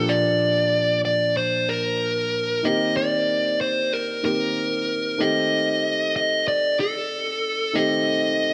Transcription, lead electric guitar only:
0.00 0.11 A4 medium
0.09 1.00 D5 medium
1.05 1.34 D5 medium
1.37 1.69 C5 medium
1.69 2.67 A#4 medium
2.65 2.96 D#5 medium
2.97 3.61 D5 loud
3.61 3.93 C5 medium
3.93 4.24 A#4 medium
4.25 5.23 A#4 medium
5.21 6.15 D#5 medium
6.16 6.45 D#5 medium
6.48 6.77 D5 medium
6.80 7.78 A4 medium
7.76 8.54 D#5 medium

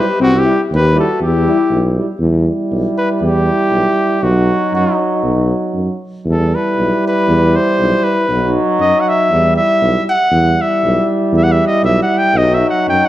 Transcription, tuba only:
0.20 0.48 C2 medium
0.71 0.98 D#2 loud
1.21 1.48 E2 medium
1.70 1.98 B1 medium
2.20 2.48 E2 medium
2.71 2.85 B1 medium
3.21 3.50 E2 medium
3.70 3.85 B1 medium
4.23 4.51 B1 loud
4.73 4.87 F#2 medium
5.24 5.52 B1 loud
5.74 5.89 F#2 medium
6.25 6.53 E2 loud
6.77 6.91 B1 medium
7.28 7.56 E2 loud
7.79 7.93 B1 medium
8.29 8.57 B1 medium
8.79 8.94 F#2 medium
9.31 9.59 E2 medium
9.82 9.96 B1 medium
10.31 10.59 E2 medium
10.84 10.98 B1 medium
11.32 11.61 E2 loud
11.84 11.98 B1 loud
12.34 12.63 B1 loud
12.87 13.01 F#2 medium

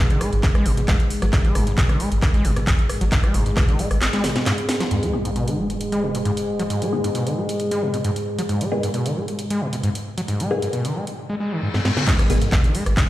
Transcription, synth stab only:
5.13 5.22 D#3 medium
5.13 5.22 B3 medium
5.13 5.22 G#4 medium
6.93 7.01 D#3 medium
6.93 7.01 B3 medium
6.93 7.01 G#4 medium
8.72 8.81 D#3 medium
8.72 8.81 B3 medium
8.72 8.81 G#4 medium
10.51 10.60 D#3 medium
10.51 10.60 B3 medium
10.51 10.60 G#4 medium
12.30 12.39 D#3 medium
12.30 12.39 B3 medium
12.30 12.39 G#4 medium

